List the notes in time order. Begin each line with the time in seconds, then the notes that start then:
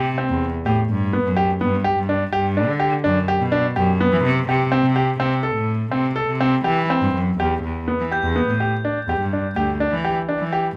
Already playing: C3
0.18 C4
0.30 E2
0.66 A2 G4
0.90 G2
1.13 B3
1.25 F#2
1.37 G4
1.61 G2 B3
1.84 G4
1.98 G2
2.09 D4
2.33 G2 G4
2.57 D4
2.69 D3
2.80 G4
3.04 F#2 D4
3.28 G4
3.41 B2
3.52 D4
3.76 F#2 G4
4.00 B3
4.12 E3
4.24 C3
4.48 C3 G4
4.72 C4
4.83 C3
4.96 G4
5.19 C3 C4
5.43 A4
5.55 A2
5.91 C3 C4
6.16 A4
6.28 C3
6.41 C4
6.64 E3 G4
6.90 C4
7.02 G2
7.15 F#2
7.39 E2 G4
7.63 E2
7.88 B3
8.00 E3
8.12 G4 G6
8.24 E2
8.36 B3
8.48 A2
8.60 G4
8.85 D4
9.08 E2 G4
9.20 G2
9.33 D4
9.56 D2 G4
9.80 D4
9.92 E3
10.05 G4
10.29 D4
10.40 E3
10.53 G4